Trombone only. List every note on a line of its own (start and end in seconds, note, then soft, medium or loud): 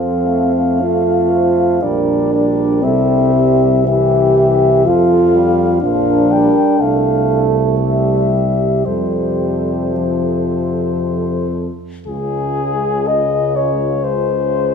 0.00 0.28 F3 soft
0.26 1.84 A3 soft
1.83 2.33 G3 soft
2.34 3.88 G3 soft
3.87 4.87 E3 soft
4.86 5.36 F3 medium
5.34 5.81 G3 soft
5.82 6.33 F3 soft
6.31 6.81 G3 soft
6.80 8.56 A3 soft
8.87 11.50 C3 soft
12.07 14.74 C#3 soft